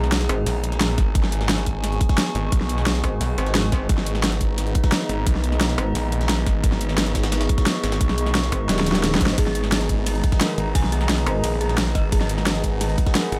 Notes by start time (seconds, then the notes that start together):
Already playing: B1 D#3 G#3 B3 G#4 D#5 A#5
0.04 snare
0.12 snare, closed hi-hat
0.21 snare, closed hi-hat
0.29 G#1, closed hi-hat
0.46 A#1, snare, closed hi-hat, open hi-hat
0.64 closed hi-hat
0.72 snare, closed hi-hat
0.81 snare, closed hi-hat
0.98 G#1, kick, snare, closed hi-hat
1.15 G#1, kick, closed hi-hat
1.23 C#6, snare
1.32 closed hi-hat
1.41 snare
1.49 snare, closed hi-hat
1.58 snare, closed hi-hat
1.66 kick, closed hi-hat
1.84 snare, closed hi-hat
1.92 closed hi-hat
2.01 kick, closed hi-hat
2.09 kick, snare, closed hi-hat
2.18 snare, closed hi-hat
2.27 snare
2.35 G#1, closed hi-hat
2.52 B1, kick, closed hi-hat
2.61 snare
2.69 closed hi-hat
2.78 snare
2.86 snare, closed hi-hat
2.95 snare, closed hi-hat
3.04 G#1, kick, closed hi-hat
3.21 B1, snare, closed hi-hat, open hi-hat
3.38 G#1, closed hi-hat
3.46 snare, closed hi-hat
3.55 snare, closed hi-hat
3.72 kick, snare, closed hi-hat
3.89 G#1 D#4, kick, closed hi-hat
3.98 A#5, snare
4.06 closed hi-hat
4.15 snare
4.24 snare, closed hi-hat
4.32 snare, closed hi-hat
4.41 kick, closed hi-hat
4.58 snare, closed hi-hat
4.67 closed hi-hat
4.75 kick, closed hi-hat
4.84 kick, snare, closed hi-hat
4.92 snare, closed hi-hat
5.01 snare
5.09 G#1, closed hi-hat
5.27 B1, kick, closed hi-hat
5.35 snare
5.44 closed hi-hat
5.52 snare
5.61 snare, closed hi-hat
5.69 snare, closed hi-hat
5.78 G#1, closed hi-hat
5.95 A#1, snare, closed hi-hat, open hi-hat
6.12 closed hi-hat
6.21 snare, closed hi-hat
6.29 snare, closed hi-hat
6.46 G#1, kick, snare, closed hi-hat
6.64 G#1, kick, closed hi-hat
6.72 C#6, snare
6.81 closed hi-hat
6.89 snare
6.98 snare, closed hi-hat
7.06 snare, closed hi-hat
7.15 kick, snare, closed hi-hat
7.23 snare, closed hi-hat
7.32 snare, closed hi-hat
7.41 snare, closed hi-hat
7.49 kick, closed hi-hat
7.58 kick, snare, closed hi-hat
7.66 snare, closed hi-hat
7.75 snare
7.84 G#1, snare, closed hi-hat
7.92 snare, closed hi-hat
8.01 B1, kick, closed hi-hat
8.09 snare
8.18 closed hi-hat
8.26 snare
8.35 snare, closed hi-hat
8.44 snare, closed hi-hat
8.52 G#1, kick, closed hi-hat
8.69 D#1, snare, closed hi-hat
8.78 snare, closed hi-hat
8.81 snare
8.86 snare, closed hi-hat
8.92 snare, closed hi-hat
8.95 snare, closed hi-hat
9.04 snare, closed hi-hat
9.12 snare
9.15 snare
9.21 G#1, kick, closed hi-hat
9.26 snare, closed hi-hat
9.38 G#1 G#4, kick, closed hi-hat, ride
9.46 A#5, snare
9.55 closed hi-hat
9.64 snare
9.72 G#4, snare, closed hi-hat, ride
9.81 snare, closed hi-hat
9.89 kick, closed hi-hat
10.06 G#4, snare, closed hi-hat, ride
10.15 closed hi-hat
10.24 kick, closed hi-hat
10.32 kick, snare, closed hi-hat
10.41 A#4, snare, closed hi-hat, ride
10.49 snare
10.58 G#1, closed hi-hat
10.75 B1 G#5, kick, closed hi-hat, ride
10.84 snare
10.92 G#4, closed hi-hat
11.01 snare
11.09 snare, closed hi-hat, ride
11.18 snare, closed hi-hat
11.27 G#1 A#4, closed hi-hat
11.44 A#1, snare, closed hi-hat, open hi-hat, ride
11.61 G#4, closed hi-hat
11.69 snare, closed hi-hat
11.78 snare, closed hi-hat, ride
11.95 G#1 D#5, kick, snare, closed hi-hat
12.12 G#1 G#4, kick, closed hi-hat, ride
12.21 F#5, snare
12.29 closed hi-hat
12.38 snare
12.46 G#4, snare, closed hi-hat, ride
12.55 snare, closed hi-hat
12.64 kick, closed hi-hat
12.81 G#4, snare, closed hi-hat, ride
12.89 closed hi-hat
12.98 kick, closed hi-hat
13.06 kick, snare, closed hi-hat
13.15 A#4, snare, closed hi-hat, ride
13.24 snare
13.32 G#1, closed hi-hat